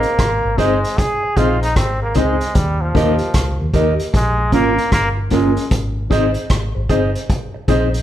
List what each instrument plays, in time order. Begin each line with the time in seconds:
Already playing: trombone A#3
0.03 closed hi-hat
0.19 fingered electric bass G#1, kick, cross-stick, closed hi-hat
0.44 fingered electric bass G#1, reed electric piano G#4 C5
0.57 fingered electric bass G1, trombone G#3, reed electric piano C4 D#4 G#4 C5, clean electric guitar G#4 C5 D#5, kick, closed hi-hat
0.84 closed hi-hat
0.98 trombone G#4, kick, closed hi-hat
1.23 muted clean electric guitar stroke
1.36 fingered electric bass A#1, reed electric piano C4 D#4 G#4 C5, trombone F4, clean electric guitar G#4 C5 D#5, kick, closed hi-hat
1.62 trombone D#4, reed electric piano G#4 C5, closed hi-hat
1.76 fingered electric bass G#1, trombone C4, kick, cross-stick, closed hi-hat
2.01 trombone A#3, reed electric piano G#4 C5
2.15 fingered electric bass C#2, trombone G#3, reed electric piano C4 D#4 G#4 C5, clean electric guitar G#4 C5 D#5, kick, closed hi-hat
2.41 closed hi-hat
2.55 fingered electric bass D#2, trombone G3, kick, closed hi-hat
2.81 trombone F3
2.94 fingered electric bass D#2, reed electric piano A#3 D#4 G4 A#4, clean electric guitar G4 A#4 D#5, kick, closed hi-hat
3.19 closed hi-hat
3.34 fingered electric bass C#2, kick, cross-stick, closed hi-hat
3.59 fingered electric bass D#2, reed electric piano G4 A#4
3.73 fingered electric bass D#2, reed electric piano A#3 D#4 G4 A#4, clean electric guitar G4 A#4 D#5, kick, closed hi-hat
3.99 closed hi-hat
4.14 fingered electric bass A#1, trombone G#3, kick, closed hi-hat
4.38 muted clean electric guitar stroke
4.52 fingered electric bass G#1, reed electric piano A#3 C#4 F4 A#4, trombone A#3, clean electric guitar C#4 F4 A#4, kick, closed hi-hat
4.78 reed electric piano F4 A#4, closed hi-hat
4.92 fingered electric bass G1, trombone A#3, kick, cross-stick, closed hi-hat
5.17 reed electric piano F4 A#4
5.30 fingered electric bass G1, trombone G#3, reed electric piano A#3 C#4 F4 A#4, clean electric guitar C#4 F4 A#4, kick, closed hi-hat
5.57 closed hi-hat
5.71 fingered electric bass G#1, kick, closed hi-hat
6.10 fingered electric bass G#1, reed electric piano C4 D#4 G#4 C5, clean electric guitar G#4 C5 D#5, kick, closed hi-hat
6.34 closed hi-hat
6.50 fingered electric bass G#1, kick, cross-stick, closed hi-hat
6.75 fingered electric bass G#1, reed electric piano G#4 C5
6.89 fingered electric bass G1, reed electric piano C4 D#4 G#4 C5, clean electric guitar G#4 C5 D#5, kick, closed hi-hat
7.15 closed hi-hat
7.30 kick, closed hi-hat
7.54 muted clean electric guitar stroke
7.68 fingered electric bass A#1, reed electric piano C4 D#4 G#4 C5, clean electric guitar G#4 C5 D#5, kick, closed hi-hat
7.94 reed electric piano G#4 C5, closed hi-hat